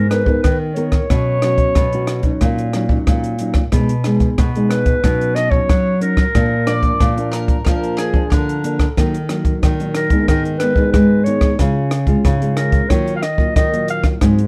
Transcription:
Already playing: G#2 G#3
0.09 B3 D#4 A#4 B4, cross-stick, closed hi-hat
0.26 B3 D#4 A#4, kick
0.43 D#3 B4, kick, cross-stick, closed hi-hat
0.74 B3 D#4 A#4 C#5, closed hi-hat
0.92 kick, cross-stick, closed hi-hat
1.10 B2 F#3 C#4 F#4, kick, cross-stick, closed hi-hat
1.42 F#3 C#4 F#4, cross-stick, closed hi-hat
1.58 kick, closed hi-hat
1.75 B2 F#3, kick, cross-stick, closed hi-hat
1.93 F#3 C#4 F#4, closed hi-hat
2.07 cross-stick, closed hi-hat
2.23 F#3 C#4 D#4, kick, closed hi-hat
2.41 A#2, kick, cross-stick, closed hi-hat
2.58 closed hi-hat
2.73 F#3 C#4 D#4, cross-stick, closed hi-hat
2.89 F#3 C#4 D#4, kick
3.07 A#2, kick, cross-stick, closed hi-hat
3.24 closed hi-hat
3.39 F#3 C#4 D#4, closed hi-hat
3.54 kick, cross-stick, closed hi-hat
3.72 B2 G#3 B3 D#4, kick, cross-stick, closed hi-hat
3.89 closed hi-hat
4.04 G#3 B3 D#4, cross-stick, closed hi-hat
4.20 kick, closed hi-hat
4.38 B2, kick, cross-stick, closed hi-hat
4.55 G#3 B3 D#4, closed hi-hat
4.69 B4, cross-stick, closed hi-hat
4.86 kick, closed hi-hat
5.03 B2 F#3 C#4 D#4, kick, cross-stick, closed hi-hat
5.21 closed hi-hat
5.35 D#5, cross-stick, closed hi-hat
5.50 F#3 C#4 D#4 C#5, kick
5.69 F#3, kick, cross-stick, closed hi-hat
6.01 F#3 C#4 D#4 A#4, closed hi-hat
6.17 kick, cross-stick, closed hi-hat
6.34 A#2 F3 A#3 D4, kick, cross-stick, closed hi-hat
6.66 F3 A#3 D4 D5, cross-stick, closed hi-hat
6.83 kick, closed hi-hat
6.99 A#2 F3, kick, cross-stick, closed hi-hat
7.17 F3 A#3 D4, closed hi-hat
7.32 A#4, cross-stick, closed hi-hat
7.48 kick, closed hi-hat
7.65 A#2 F3 A#3 D4 A#4, kick, cross-stick, closed hi-hat
7.83 closed hi-hat
7.97 G#4, cross-stick, closed hi-hat
8.13 F3 A#3 D4, kick
8.30 D3 F3 A#4, kick, cross-stick, closed hi-hat
8.49 closed hi-hat
8.63 F3 A#3 D4, closed hi-hat
8.79 kick, cross-stick, closed hi-hat
8.97 D#3 F#3 A#3 D#4, kick, cross-stick, closed hi-hat
9.14 closed hi-hat
9.29 F#3 A#3 D#4, cross-stick, closed hi-hat
9.45 kick, closed hi-hat
9.63 A#2 D#3, kick, cross-stick, closed hi-hat
9.80 F#3 A#3 D#4, closed hi-hat
9.95 A#4, cross-stick, closed hi-hat
10.10 D#3 G#3 B3 D#4, kick, closed hi-hat
10.28 G#2 D#3 A#4, kick, cross-stick, closed hi-hat
10.45 closed hi-hat
10.58 D#3 G#3 B3 B4, cross-stick, closed hi-hat
10.63 D#4
10.76 D#3 G#3 B3 D#4, kick
10.92 G#2 G#3 B4, kick, cross-stick, closed hi-hat
11.24 D#3 G#3 B3 D#4 C#5, closed hi-hat
11.41 kick, cross-stick, closed hi-hat
11.59 C#3 G#3 C#4 F4, kick, cross-stick, closed hi-hat
11.91 cross-stick, closed hi-hat
12.07 G#3 C#4 F4, kick, closed hi-hat
12.25 G#2 C#3, kick, cross-stick, closed hi-hat
12.42 G#3 C#4 F4, closed hi-hat
12.57 A#4, cross-stick, closed hi-hat
12.72 kick, closed hi-hat
12.89 D#3 F#3 A#3 F4 C#5, kick, cross-stick, closed hi-hat
13.07 closed hi-hat
13.16 F5
13.23 D#5, cross-stick, closed hi-hat
13.38 F#3 A#3 F4, kick
13.56 A#2 D#3 D#5, kick, cross-stick, closed hi-hat
13.72 F#3 A#3 F4, closed hi-hat
13.88 F5, closed hi-hat
14.04 kick, cross-stick, closed hi-hat
14.21 G#2 F#3 C4 D#4, kick, cross-stick, closed hi-hat
14.38 closed hi-hat

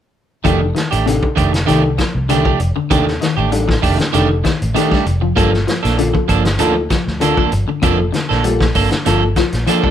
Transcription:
0.44 F1 D#3 F3 A3 D4 D#4 G4 A4, kick, closed hi-hat, claves
0.61 muted clean electric guitar stroke
0.75 D#3, snare, closed hi-hat
0.91 A1 A3 D4 G4, closed hi-hat, claves
1.06 C3 D4 D#4 G4 A4, muted clean electric guitar stroke, closed hi-hat
1.23 muted clean electric guitar stroke, kick
1.36 F1 D#3 A3 D4 G4, kick, closed hi-hat, claves
1.52 D3, muted clean electric guitar stroke, snare, closed hi-hat
1.66 C2 D#3 A3 D4 D#4 G4 A4, closed hi-hat
1.83 muted clean electric guitar stroke
1.98 F3, muted clean electric guitar stroke, kick, snare, closed hi-hat, claves
2.15 C2
2.29 D3 D#3 A3 D4 D#4 G4 A4, closed hi-hat, claves
2.45 F3 A3 D4 G4, kick
2.60 F1, muted clean electric guitar stroke, closed hi-hat
2.76 D3, muted clean electric guitar stroke, muted fingered electric bass stroke
2.90 D#2 C3 D#3 A3 D4 D#4 G4 A4, kick, closed hi-hat, claves
3.07 muted clean electric guitar stroke, snare
3.21 D#3, snare, closed hi-hat
3.37 A1 A3 D4 G4, claves
3.52 G3 D4 D#4 G4 A4, muted clean electric guitar stroke, closed hi-hat
3.68 F3, muted clean electric guitar stroke, kick, snare
3.82 F1 D#3 A3 D4 G4, kick, open hi-hat, claves
3.99 D3, muted clean electric guitar stroke, snare, closed hi-hat
4.13 F1 D3 D#3 A3 D4 D#4 G4 A4, closed hi-hat
4.29 muted clean electric guitar stroke
4.44 D#3, muted clean electric guitar stroke, kick, snare, closed hi-hat, claves
4.62 A1, closed hi-hat
4.74 D#3 A3 D4 D#4 G4 A4, closed hi-hat, claves
4.91 G3 A3 D4 G4, muted fingered electric bass stroke, kick, snare
5.06 F1, muted clean electric guitar stroke, closed hi-hat
5.21 F3, muted clean electric guitar stroke
5.36 G1 F3 G3 A#3 D4 F4 A4, kick, closed hi-hat, claves
5.52 muted clean electric guitar stroke, snare
5.67 F3, snare, closed hi-hat
5.83 A#1 A#3 D4 A4, snare, closed hi-hat, claves
5.97 D3 A#3 F4 A4, muted clean electric guitar stroke, closed hi-hat
6.14 F3, muted clean electric guitar stroke, kick
6.28 G1 F3 A#3 D4 A4, kick, closed hi-hat, claves
6.44 D3, muted clean electric guitar stroke, snare, closed hi-hat
6.59 D2 F3 A#3 D4 D#4 F4 A4, closed hi-hat
6.75 muted clean electric guitar stroke
6.90 F3, muted clean electric guitar stroke, kick, snare, closed hi-hat, claves
7.07 D2, snare
7.20 D3 A#3 D4 F4 A4, closed hi-hat, claves
7.37 F3 A#3 D4 A4, kick
7.52 G1, muted clean electric guitar stroke, closed hi-hat
7.68 D3, muted clean electric guitar stroke
7.82 F1 C3 F3 A#3 D4 F4 A4, kick, closed hi-hat, claves
7.99 muted clean electric guitar stroke
8.12 D3, snare, closed hi-hat
8.29 A#1 A#3 D4 A4, snare, claves
8.44 G3 A#3 F4 A4, muted clean electric guitar stroke, closed hi-hat
8.61 F3, muted clean electric guitar stroke, kick, snare
8.75 G1 A#3 D4 A4, muted clean electric guitar stroke, kick, open hi-hat, claves
8.91 D3, muted clean electric guitar stroke, snare, closed hi-hat
9.06 G1 D3 F3 A#3 F4 A4, muted clean electric guitar stroke, snare, closed hi-hat
9.23 muted clean electric guitar stroke
9.36 F3, muted clean electric guitar stroke, kick, snare, closed hi-hat, claves
9.52 A#1, snare, closed hi-hat
9.67 F3 A#3 D4 F4 A4, closed hi-hat, claves
9.83 G3 A#3 D4 A4, muted fingered electric bass stroke, kick

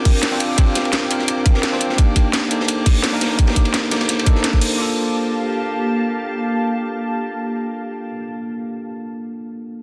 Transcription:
Already playing: C4 D4 F4 G4 A#4 F5 G5 D6
0.05 kick, closed hi-hat, open hi-hat
0.22 snare, closed hi-hat, ride
0.31 C4 D4 F4 C5, snare
0.40 closed hi-hat, ride
0.56 C4 D4 F4 G4, kick, closed hi-hat, ride
0.75 snare, closed hi-hat, ride
0.85 ride
0.92 snare, closed hi-hat, ride
1.09 C4 D4 F4 A#4, closed hi-hat, ride
1.19 snare
1.28 closed hi-hat, ride
1.46 kick, closed hi-hat, ride
1.54 snare
1.63 snare, closed hi-hat, ride
1.72 C4 D4 F4 C5, snare
1.80 closed hi-hat, ride
1.89 snare
1.97 A#3 D4 D#4 G4 C5 D6, kick, closed hi-hat, ride
2.16 kick, closed hi-hat, ride
2.33 snare, closed hi-hat, ride
2.49 A#3 D4 D#4 A4, closed hi-hat, ride
2.60 snare
2.68 closed hi-hat, ride
2.86 kick, closed hi-hat, open hi-hat
3.03 snare, closed hi-hat, ride
3.12 A#3 D4 D#4 A#4, snare
3.21 snare, closed hi-hat, ride
3.37 A#3 D4 D#4 G4, kick, closed hi-hat, ride
3.47 snare, ride
3.56 kick, closed hi-hat
3.65 ride
3.74 snare, closed hi-hat, ride
3.91 A#3 D4 D#4 A4, snare, closed hi-hat, ride
4.01 snare, ride
4.09 snare, closed hi-hat, ride
4.19 ride
4.25 A#3 D4 D#4 A4, kick, closed hi-hat, ride
4.35 snare
4.44 snare, closed hi-hat, ride
4.53 kick, snare
4.61 closed hi-hat, open hi-hat
4.77 A#3 D4 F4 G4 F5 A5
4.82 A4

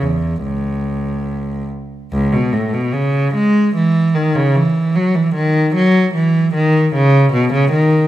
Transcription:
0.01 E2
0.43 C#2
2.12 C#2
2.32 B2
2.53 A2
2.73 B2
2.93 C#3
3.34 G#3
3.75 E3
4.15 D#3
4.35 C#3
4.55 E3
4.95 F#3
5.15 E3
5.34 D#3
5.75 F#3
6.14 E3
6.53 D#3
6.93 C#3
7.32 B2
7.53 C#3
7.71 D#3

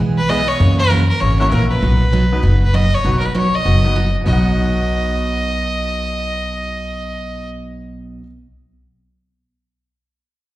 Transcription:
0.00 B1 E3 G#3 B3 E4 G#4
0.18 B4
0.29 E3 G#3 B3 E4 G#4 B4 D#5
0.48 C#5
0.60 F#2 C#3 E3 A#3 C#4 F#4
0.78 A#4
0.90 C#3 E3 A#3 C#4 F#4
1.09 A#4
1.20 G#1 C#3 E3 A#3 C#4 F#4 C#5
1.39 A#3 C#4 E4 F#4 A#4 C#5
1.51 A#1 C#3 E3 A#3 C#4 F#4 A#4
1.70 B4
1.82 B1 B2 F#3 B3 D#4 F#4
2.12 B2 F#3 B3 D#4 F#4
2.32 F#3 B3 D#4 F#4 B4
2.42 F#1 B2 F#3 B3 D#4 F#4
2.63 B4
2.73 B2 F#3 B3 D#4 F#4 D#5
2.94 C#5
3.04 B1 B2 F#3 B3 D#4 F#4 B4
3.19 A#4
3.25 B4
3.34 B2 F#3 B3 D#4 F#4 C#5
3.55 D#5
3.65 F#1 B2 F#3 B3 D#4 F#4
3.84 F#3 B3 D#4 F#4 B4
3.95 B2 F#3 B3 D#4 F#4
4.21 B2 B3
4.26 B1 B2 F#3 B3 D#4 F#4 D#5
4.30 F#4 F#5

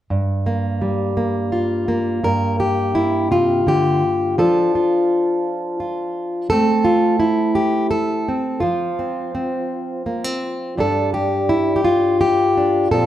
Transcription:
0.10 G2
0.46 A#3
0.81 G3
1.17 A#3
1.52 F4
1.88 A#3
2.24 G2 A#4
2.60 G4
2.95 E4
3.31 C3 F4
3.67 D3 G4
4.38 F3 D4 F4 A4
4.75 F4
5.80 F4
6.50 A3 C4 A4
6.84 F4
7.20 E4
7.55 G4
7.91 A4
8.28 C4
8.60 F3 F4
8.99 C4
9.35 C4
10.06 A#3
10.24 C4
10.77 G2 G3 D4 A4
11.14 G4
11.49 E4
11.76 G4
11.85 F4
12.21 G4
12.57 D4
12.91 A#2 F3 C4 F4 A4

